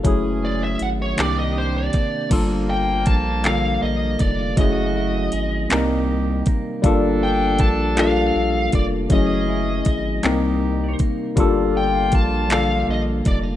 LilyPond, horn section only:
\new Staff \with { instrumentName = "Horn section" } { \time 6/8 \key g \minor \tempo 4. = 53 <e cis' gis'>4 r8 <ees d' g'>4 r8 | <d f bes>2~ <d f bes>8 r8 | <cis a fis'>4 r8 <ees ees' g'>4 r8 | <f d' a'>2~ <f d' a'>8 r8 |
<e cis' gis'>4 r8 <ees ees' g'>4 r8 | <d bes f'>2~ <d bes f'>8 r8 | }